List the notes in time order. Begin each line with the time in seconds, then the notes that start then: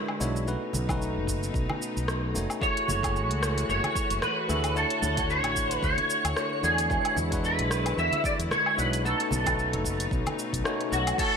Already playing: D3 G#3 D4 E4 F#4 B4
0.08 low woodblock
0.19 B1 G#3 D4 E4 F#4 C#5, shaker
0.36 shaker
0.47 B2 A3 C#4 D#4 F#4 B4, shaker
0.73 B1, high conga, low conga, shaker
0.88 A3 C#4 D#4 F#4 B4, kick, high conga, low woodblock, shaker
1.02 shaker
1.16 F#1
1.27 kick, shaker
1.43 shaker
1.54 B1, kick, shaker
1.70 high conga, low woodblock
1.82 shaker
1.96 B1, shaker
2.08 cross-stick, shaker
2.34 F#1 A3 C#4 D#4 F#4 C#5, shaker
2.50 low woodblock, shaker
2.61 E3 A3 E4 F#4 G#4 C#5 C#6, kick, shaker
2.77 closed hi-hat
2.88 F#1, high conga, low conga, shaker
3.02 A3 E4 F#4 G#4 C#5, kick, closed hi-hat, low woodblock, shaker
3.16 shaker
3.30 C#2, closed hi-hat
3.43 cross-stick, shaker
3.58 closed hi-hat, shaker
3.69 F#1 C#5, shaker
3.84 closed hi-hat, high conga, low woodblock
3.95 kick, shaker
4.10 F#1, closed hi-hat, shaker
4.22 B4, cross-stick, low conga, shaker
4.48 D2 A3 E4 F#4 G#4 E5, shaker
4.64 closed hi-hat, low woodblock, shaker
4.75 D3 A3 D4 E4 F#4 A4 C#5, shaker
4.90 closed hi-hat
5.02 D2, high conga, low conga, shaker
5.16 A3 D4 E4 F#4 C#5, kick, closed hi-hat, high conga, shaker
5.30 C#5, shaker
5.44 A1, closed hi-hat, low woodblock
5.56 kick, shaker
5.71 closed hi-hat, shaker
5.83 D2 C#5, kick, shaker
5.98 closed hi-hat, high conga
6.10 shaker
6.24 D2, closed hi-hat, low woodblock, shaker
6.36 cross-stick, shaker
6.63 E2 A3 D4 E4 F#4 G#4 D5, shaker
6.78 closed hi-hat, shaker
6.89 D3 G#3 D4 E4 F#4 B4, kick, shaker
7.05 closed hi-hat, low woodblock
7.16 E2, high conga, low conga, shaker
7.30 G#3 D4 E4 F#4 B4, kick, closed hi-hat, shaker
7.44 B4, shaker
7.59 B1, closed hi-hat
7.71 cross-stick, shaker
7.86 closed hi-hat, low woodblock, shaker
7.97 E2 E5, shaker
8.12 closed hi-hat, high conga
8.24 D5, kick, shaker
8.39 E2, closed hi-hat, shaker
8.51 C#5, cross-stick, low conga, shaker
8.66 low woodblock
8.76 B1 G#3 D4 E4 F#4 B4 C#5, shaker
8.93 closed hi-hat, shaker
9.03 B2 A3 C#4 D#4 F#4 A4 B4, shaker
9.20 closed hi-hat
9.31 B1, high conga, low conga, shaker
9.44 A3 C#4 D#4 F#4 B4, kick, closed hi-hat, high conga, low woodblock, shaker
9.59 shaker
9.73 F#1, closed hi-hat, low conga
9.85 kick, shaker
10.00 closed hi-hat, shaker
10.11 B1, kick, shaker
10.26 closed hi-hat, high conga, low woodblock
10.39 shaker
10.53 B1, kick, closed hi-hat, shaker
10.64 A3 C#4 D#4 F#4 C#5, cross-stick, shaker
10.81 closed hi-hat
10.92 B1 F#4, shaker
11.07 closed hi-hat, low woodblock, shaker
11.18 E3 A3 E4 F#4 A4 C#5 G#5, kick, closed hi-hat, crash, shaker